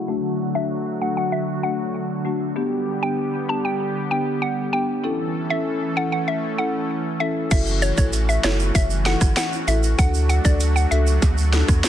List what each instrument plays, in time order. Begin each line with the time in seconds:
Already playing: analog synth pad A3
0.08 analog synth pad D3 F#3 F#4, marimba A3 D4 F#4
0.55 marimba A3 D4 F#4, synth pluck E5
1.01 marimba A3 D4 F#4, synth pluck F#5
1.17 synth pluck F#5
1.32 synth pluck E5
1.63 marimba A3 D4 F#4, synth pluck F#5
2.25 marimba A3 D4 F#4
2.56 analog synth pad G3 B3 G4, marimba B3 D4 G4
3.02 marimba B3 D4 G4, synth pluck G5
3.49 marimba B3 D4 G4, synth pluck A5
3.65 synth pluck G5
4.11 marimba B3 D4 G4, synth pluck G5
4.42 synth pluck F#5
4.73 marimba B3 D4 G4, synth pluck G5
5.04 analog synth pad E3 A3 C#4 A4, marimba C#4 E4 A4
5.50 marimba C#4 E4 A4, synth pluck E5
5.96 marimba C#4 E4 A4, synth pluck F#5
6.12 synth pluck F#5
6.28 synth pluck E5
6.58 marimba C#4 E4 A4, synth pluck F#5
7.20 marimba C#4 E4 A4, synth pluck E5
7.51 sub bass F#1, analog synth pad E3 A3 C#4 F#4, marimba E4 F#4 A4, synth pluck E5, kick, closed hi-hat, crash, shaker
7.67 shaker
7.82 synth pluck C#5, closed hi-hat, shaker
7.97 sub bass A1, marimba E4 F#4 A4, synth pluck C#5, kick, shaker
8.13 closed hi-hat, shaker
8.29 synth pluck E5, shaker
8.44 sub bass F#1, marimba E4 F#4 A4, synth pluck C#5, snare, closed hi-hat
8.60 shaker
8.75 sub bass F#1, synth pluck E5, kick, closed hi-hat, shaker
8.90 shaker
9.06 marimba E4 F#4 A4, synth pluck F#5, snare, closed hi-hat
9.21 sub bass G1, kick, cross-stick, shaker
9.37 synth pluck F#5, snare, closed hi-hat, shaker
9.53 shaker
9.67 sub bass A1, marimba E4 F#4 A4, synth pluck E5, closed hi-hat, shaker
9.83 shaker
9.98 sub bass D2, analog synth pad F#3 A3 D4, marimba D4 F#4 A4, synth pluck F#5, kick, closed hi-hat, shaker
10.14 shaker
10.29 synth pluck F#5, closed hi-hat, shaker
10.45 sub bass D2, marimba D4 F#4 A4, synth pluck D5, kick, shaker
10.60 closed hi-hat, shaker
10.76 synth pluck F#5, shaker
10.91 sub bass C#2, marimba D4 F#4 A4, synth pluck E5, closed hi-hat
11.07 shaker
11.22 sub bass D2, kick, closed hi-hat, high timbale, shaker
11.38 shaker
11.53 marimba D4 F#4 A4, snare, closed hi-hat
11.68 sub bass E2, kick, cross-stick, shaker
11.84 snare, closed hi-hat, shaker